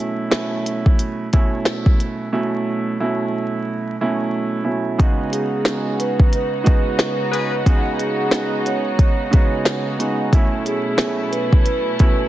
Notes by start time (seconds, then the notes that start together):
Already playing: B2 F#3 A3 C#4 E4
0.30 B2 F#3 A3 C#4 E4, snare
0.34 closed hi-hat
0.66 closed hi-hat
0.86 kick
0.99 closed hi-hat
1.33 B2 F#3 A3 C#4 E4, kick, closed hi-hat
1.65 snare, closed hi-hat
1.86 kick
2.00 closed hi-hat
2.32 B2 F#3 A3 C#4 E4
3.00 B2 F#3 A3 C#4 E4
4.01 B2 F#3 A3 C#4 E4
4.64 B2 F#3 A3 C#4 E4
4.98 C#3 G#3 B3 D#4 F#4, kick, closed hi-hat
5.31 G#4, closed hi-hat
5.65 C#3 G#3 B3 D#4 F#4, snare, closed hi-hat
5.99 B4, closed hi-hat
6.20 kick
6.33 B4, closed hi-hat
6.64 C#3 G#3 B3 D#4 F#4 B4, kick, closed hi-hat
6.99 snare, closed hi-hat
7.32 F#4 G#4 B4, closed hi-hat
7.66 C#3 G#3 B3 D#4 F#4, kick, closed hi-hat
7.98 G#4, closed hi-hat
8.31 C#3 G#3 B3 D#4 F#4, snare, closed hi-hat
8.66 C#5, closed hi-hat
8.99 kick, closed hi-hat
9.31 C#3 G#3 B3 D#4 F#4, kick, closed hi-hat
9.65 snare, closed hi-hat
9.99 C#3 G#3 B3 D#4 F#4, closed hi-hat
10.33 B2 F#3 A3 C#4 E4, kick, closed hi-hat
10.65 G#4, closed hi-hat
10.97 B2 F#3 A3 C#4 E4, snare, closed hi-hat
11.31 B4, closed hi-hat
11.53 kick
11.64 B4, closed hi-hat
11.99 B2 F#3 A3 C#4 E4 B4, kick, closed hi-hat